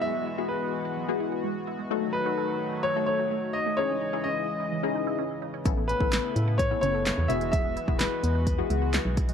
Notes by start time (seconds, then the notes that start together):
Already playing: E3 G#3 B3 E4 F#4 G#4
0.01 F#3 E5
0.15 G#3
0.27 E4
0.38 B3 E4 F#4 G#4
0.49 G#3 B4
0.85 F#4
0.97 F#3
1.08 G#3 B3 E4 F#4 G#4
1.20 E4
1.32 F#4
1.44 G#3
1.67 E4
1.79 G#3
1.90 D#3 F#3 A3 D#4 F#4 A4
2.02 A3
2.13 D#4 B4
2.26 A3 D#4 F#4 A4
2.38 A3
2.73 F#4
2.83 F#3 C#5
2.96 A3 D#4 F#4 A4
3.06 D#4 C#5
3.19 F#4
3.31 A3
3.53 D#4 D#5
3.66 A3
3.77 C#3 E3 G#3 C#4 D#4 E4 G#4 C#5 D#5
3.90 C#4
4.01 D#4
4.13 C#4 D#4 E4 G#4
4.24 C#4 D#5
4.60 E4
4.72 E3
4.83 C#4 D#4 E4 G#4
4.95 D#4
5.07 E4
5.19 C#4
5.42 D#4
5.54 C#4
5.65 A1 A3 B3 C#4 E4 A4, kick, closed hi-hat
5.77 B3
5.88 C#4 B4, closed hi-hat
6.00 A1 B3 C#4 E4 A4, kick
6.12 B3, snare, clap, closed hi-hat
6.36 A2, closed hi-hat
6.48 A4
6.58 A3 C#5, kick, closed hi-hat
6.71 B3 C#4 E4 A4
6.81 F#1 C#4 C#5, closed hi-hat
6.95 A4
7.06 B3, snare, clap, closed hi-hat
7.18 E2
7.28 E1 E3 G#3 B3 E4 F#4 G#4 E5, closed hi-hat
7.41 G#3, closed hi-hat
7.52 F#3 E5, kick, closed hi-hat
7.65 G#3
7.76 E4, closed hi-hat
7.88 E1 B3 E4 F#4 G#4, kick
7.99 G#3 B4, snare, clap, closed hi-hat
8.23 E2, closed hi-hat
8.35 F#4
8.47 F#3, kick, closed hi-hat
8.58 G#3 B3 E4 F#4 G#4
8.70 C#2 E4, closed hi-hat
8.82 F#4
8.93 G#3, snare, clap, closed hi-hat
9.05 B1
9.17 E4, kick, closed hi-hat
9.29 G#3, closed hi-hat